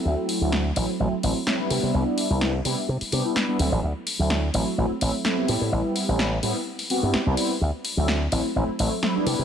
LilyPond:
<<
  \new Staff \with { instrumentName = "Analog polysynth" } { \time 4/4 \key d \mixolydian \tempo 4 = 127 <fis a c' e'>8. <fis a c' e'>8 r16 <fis a c' e'>16 r16 <fis a c' e'>16 r16 <fis a c' e'>16 r16 <fis a c' e'>16 <g b d' e'>8.~ | <g b d' e'>8. <g b d' e'>8 r16 <g b d' e'>16 r8. <g b d' g'>16 <g b d' e'>8 <g b d' e'>16 <fis a c' e'>16 r16 | r8. <fis a c' e'>8 r16 <fis a c' e'>16 r16 <fis a c' e'>16 r16 <fis a c' e'>16 r16 <fis a c' e'>16 <g b c' e'>8.~ | <g b c' e'>8. <g b c' e'>8 r16 <g b c' e'>16 r8. <g b c' fis'>16 <g b c' e'>8 <g b c' e'>16 <g b c' e'>16 r16 |
r8. <fis a c' e'>8 r16 <fis a c' e'>16 r16 <fis a c' e'>16 r16 <fis a c' e'>16 r16 <fis a c' e'>16 <g b d' e'>8. | }
  \new Staff \with { instrumentName = "Slap bass" } { \clef bass \time 4/4 \key d \mixolydian d,16 r8 d,8 r16 a,,16 r16 a,,16 r16 a,,16 r8. c16 c16 | c,16 r8 c,8 r16 c16 r16 c16 r16 c16 r8. d,16 a,,16 | d,16 r8 d,8 r16 a,,16 r16 a,,16 r16 a,,16 r8. a,16 a,16 | a,,16 r8 a,,8 r16 a,16 r4 g,16 r16 c,16 r8 |
d,16 r8 d,8 r16 a,,16 r16 a,,16 r16 a,,16 r8. c16 c16 | }
  \new DrumStaff \with { instrumentName = "Drums" } \drummode { \time 4/4 r8 hho8 sn8 hho8 r8 hho8 sn8 hho8 | r8 hho8 sn8 hho8 r16 hho16 hho8 sn8 hho8 | r8 hho8 sn8 hho8 r8 hho8 sn8 hho8 | r8 hho8 sn8 hho8 r16 hho16 hho8 sn8 hho8 |
r8 hho8 sn8 hho8 r8 hho8 sn8 hho8 | }
>>